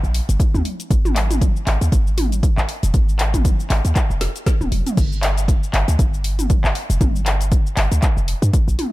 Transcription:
0.03 0.20 A#1 medium
0.03 shaker soft
0.15 open hi-hat medium
0.29 0.37 G1 loud
0.29 closed hi-hat soft
0.29 shaker medium
0.40 kick loud
0.40 closed hi-hat medium
0.40 shaker medium
0.54 0.62 D#2 loud
0.54 mid tom medium
0.54 shaker soft
0.65 open hi-hat medium
0.80 closed hi-hat medium
0.80 shaker medium
0.90 1.49 G#1 loud
0.90 kick loud
0.90 closed hi-hat medium
0.90 shaker medium
1.05 mid tom medium
1.05 shaker soft
1.16 clap medium
1.16 open hi-hat medium
1.31 closed hi-hat soft
1.31 mid tom medium
1.31 shaker medium
1.41 kick loud
1.41 closed hi-hat medium
1.41 shaker medium
1.56 shaker soft
1.67 1.77 G#1 medium
1.67 clap medium
1.67 open hi-hat medium
1.81 1.89 D#2 medium
1.81 closed hi-hat soft
1.81 shaker medium
1.92 2.51 G#1 medium
1.92 kick loud
1.92 closed hi-hat medium
1.92 shaker medium
2.07 shaker soft
2.18 open hi-hat medium
2.18 mid tom medium
2.32 closed hi-hat soft
2.32 shaker medium
2.43 kick loud
2.43 closed hi-hat medium
2.43 shaker medium
2.58 2.65 G#1 medium
2.58 clap medium
2.58 shaker soft
2.69 open hi-hat medium
2.83 2.91 F1 loud
2.83 closed hi-hat medium
2.83 shaker medium
2.94 3.53 G#1 loud
2.94 kick loud
2.94 closed hi-hat medium
2.94 shaker medium
3.09 shaker soft
3.19 clap medium
3.19 open hi-hat medium
3.34 kick medium
3.34 closed hi-hat soft
3.34 mid tom medium
3.34 shaker medium
3.45 kick loud
3.45 closed hi-hat medium
3.45 shaker medium
3.60 shaker soft
3.70 3.81 G#1 medium
3.70 clap medium
3.70 open hi-hat medium
3.85 3.93 D#2 medium
3.85 closed hi-hat soft
3.85 shaker medium
3.96 kick loud
3.96 clap medium
3.96 closed hi-hat medium
3.96 shaker medium
4.10 4.27 F1 medium
4.10 shaker soft
4.21 snare medium
4.21 open hi-hat loud
4.36 closed hi-hat soft
4.36 shaker medium
4.46 kick loud
4.46 snare medium
4.46 closed hi-hat medium
4.46 shaker medium
4.61 4.69 D#1 medium
4.61 mid tom medium
4.61 shaker soft
4.72 4.82 F1 medium
4.72 open hi-hat medium
4.87 closed hi-hat medium
4.87 mid tom medium
4.87 shaker medium
4.97 5.56 G1 loud
4.97 kick loud
4.97 closed hi-hat medium
4.97 crash loud
4.97 shaker medium
5.12 shaker soft
5.23 clap loud
5.23 open hi-hat loud
5.37 closed hi-hat soft
5.37 shaker medium
5.48 kick loud
5.48 closed hi-hat medium
5.48 shaker medium
5.63 shaker soft
5.73 5.84 G1 medium
5.73 clap loud
5.73 open hi-hat medium
5.88 5.96 D2 medium
5.88 closed hi-hat soft
5.88 shaker medium
5.99 6.58 G1 medium
5.99 kick loud
5.99 closed hi-hat medium
5.99 shaker medium
6.14 shaker soft
6.24 open hi-hat medium
6.39 closed hi-hat soft
6.39 mid tom medium
6.39 shaker medium
6.50 kick loud
6.50 closed hi-hat medium
6.50 shaker medium
6.64 6.72 G1 medium
6.64 clap loud
6.64 shaker soft
6.75 open hi-hat medium
6.90 6.98 F1 loud
6.90 closed hi-hat soft
6.90 shaker medium
7.01 7.59 G1 loud
7.01 kick loud
7.01 closed hi-hat medium
7.01 mid tom medium
7.01 shaker medium
7.16 shaker soft
7.26 clap medium
7.26 open hi-hat medium
7.41 closed hi-hat soft
7.41 shaker medium
7.52 kick loud
7.52 closed hi-hat medium
7.52 shaker medium
7.67 shaker soft
7.77 7.87 G1 medium
7.77 clap loud
7.77 open hi-hat medium
7.92 7.99 D2 medium
7.92 closed hi-hat soft
7.92 shaker medium
8.02 kick loud
8.02 clap medium
8.02 closed hi-hat medium
8.02 shaker medium
8.17 8.34 F1 medium
8.17 shaker soft
8.28 open hi-hat medium
8.42 8.50 G2 loud
8.42 closed hi-hat soft
8.42 shaker medium
8.53 kick loud
8.53 closed hi-hat medium
8.53 shaker medium
8.68 8.76 A#1 loud
8.68 shaker soft
8.79 open hi-hat medium
8.79 mid tom medium

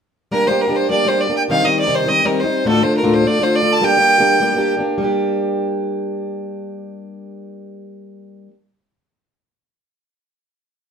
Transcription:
0.32 0.47 G3 medium
0.32 0.48 A#3 medium
0.32 0.48 D4 medium
0.32 0.49 G4 medium
0.32 0.49 A#4 medium
0.47 0.69 G3 medium
0.47 0.69 A#3 medium
0.47 0.68 D4 medium
0.47 0.63 C5 medium
0.51 0.67 G4 medium
0.61 0.78 A#4 medium
0.68 0.88 G3 soft
0.68 0.89 A#3 soft
0.68 0.90 D4 medium
0.68 0.90 G4 medium
0.76 0.90 C5 medium
0.89 1.04 G3 medium
0.89 1.05 A#3 medium
0.89 1.07 D4 medium
0.89 1.07 G4 medium
0.89 1.09 D5 medium
1.05 1.27 G3 soft
1.05 1.28 A#3 soft
1.05 1.28 D4 medium
1.05 1.26 G4 medium
1.05 1.22 C5 medium
1.21 1.36 D5 medium
1.27 1.50 A#3 soft
1.27 1.50 D4 soft
1.27 1.49 G4 soft
1.37 1.42 G5 medium
1.48 1.65 C3 medium
1.48 1.63 D#3 medium
1.48 1.65 G3 medium
1.48 1.66 C4 medium
1.48 1.66 D#4 medium
1.48 1.66 F5 medium
1.65 1.86 D#3 medium
1.65 1.86 G3 medium
1.65 1.86 C4 medium
1.65 1.85 D#4 medium
1.65 1.78 D#5 medium
1.79 1.96 D5 medium
1.86 2.09 C3 soft
1.86 2.05 D#3 medium
1.86 2.07 G3 soft
1.86 2.08 C4 medium
1.86 2.07 D#4 medium
1.95 2.10 C5 medium
2.06 2.22 D#3 medium
2.06 2.24 G3 medium
2.06 2.24 C4 medium
2.06 2.25 D#4 medium
2.06 2.27 D#5 medium
2.23 2.45 D#3 soft
2.23 2.45 G3 medium
2.23 2.44 C4 medium
2.23 2.41 A#4 medium
2.27 2.43 D#4 medium
2.40 2.68 C5 medium
2.44 2.66 G3 soft
2.44 2.66 C4 soft
2.44 2.66 D#4 soft
2.65 2.81 D2 medium
2.65 2.82 A2 medium
2.65 2.79 D3 medium
2.65 2.82 A3 medium
2.65 2.82 D4 medium
2.65 2.82 F4 medium
2.65 2.85 A4 medium
2.81 3.02 D3 medium
2.81 3.03 A3 medium
2.81 3.02 D4 medium
2.81 3.02 F4 medium
2.81 2.96 C5 medium
2.97 3.15 A#4 medium
3.04 3.25 D2 soft
3.04 3.25 A2 medium
3.04 3.23 D3 soft
3.04 3.25 A3 medium
3.04 3.25 D4 medium
3.04 3.25 F4 medium
3.13 3.29 C5 medium
3.24 3.39 D3 medium
3.24 3.40 A3 medium
3.24 3.40 D4 medium
3.24 3.42 F4 medium
3.24 3.45 D5 medium
3.40 3.61 D3 soft
3.40 3.62 A3 medium
3.40 3.61 D4 medium
3.40 3.59 F4 medium
3.40 3.57 C5 medium
3.55 3.74 D5 medium
3.60 3.81 D3 soft
3.60 3.82 A3 soft
3.60 3.82 D4 soft
3.60 3.82 F4 soft
3.72 3.86 A5 medium
3.81 3.96 G3 medium
3.81 3.98 A#3 medium
3.81 3.99 D4 medium
3.81 3.99 G4 medium
3.81 4.71 G5 loud
3.97 4.19 G3 medium
3.97 4.19 A#3 medium
3.97 4.17 G4 medium
4.18 4.39 G3 soft
4.18 4.40 A#3 medium
4.18 4.41 D4 medium
4.18 4.41 G4 medium
4.40 4.54 G3 medium
4.40 4.55 A#3 medium
4.40 4.56 D4 medium
4.40 4.57 G4 medium
4.55 4.78 G3 soft
4.55 4.78 A#3 medium
4.55 4.77 D4 medium
4.55 4.76 G4 medium
4.77 4.99 A#3 soft
4.77 5.00 D4 soft
4.77 4.99 G4 soft
4.98 8.48 G3 medium
4.98 8.51 A#3 medium
5.03 8.53 D4 medium
5.03 8.54 G4 medium

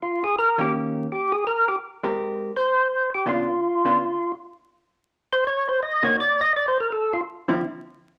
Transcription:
0.02 0.23 F4 medium
0.24 0.36 G#4 medium
0.39 0.59 A#4 medium
0.58 1.05 D#3 medium
0.58 1.05 A#3 medium
0.58 1.06 C#4 medium
0.58 1.06 G4 medium
0.58 0.73 G4 medium
1.12 1.32 G4 medium
1.32 1.44 G#4 medium
1.47 1.68 A#4 medium
1.68 1.76 G4 medium
2.03 2.50 G#3 medium
2.03 2.51 C4 medium
2.03 2.51 G4 medium
2.03 2.51 A#4 medium
2.56 3.10 C5 medium
3.14 3.26 G4 medium
3.26 3.46 C#3 medium
3.26 3.47 B3 medium
3.26 3.47 D4 medium
3.26 3.47 F4 medium
3.26 4.32 F4 medium
3.85 3.97 C#3 medium
3.85 3.97 B3 medium
3.85 3.97 D4 medium
3.85 3.98 F4 medium
5.33 5.44 C5 loud
5.47 5.68 C#5 loud
5.69 5.80 C5 medium
5.83 6.03 D#5 medium
6.03 6.15 C3 medium
6.03 6.15 A#3 medium
6.03 6.15 D#4 medium
6.03 6.15 F#4 medium
6.03 6.17 C#5 loud
6.20 6.41 D5 medium
6.41 6.53 D#5 loud
6.56 6.66 D5 medium
6.68 6.78 C5 medium
6.80 6.90 A#4 medium
6.92 7.13 A4 medium
7.13 7.21 F4 loud
7.48 7.60 D3 medium
7.48 7.60 F3 medium
7.48 7.60 C4 medium
7.48 7.61 E4 medium

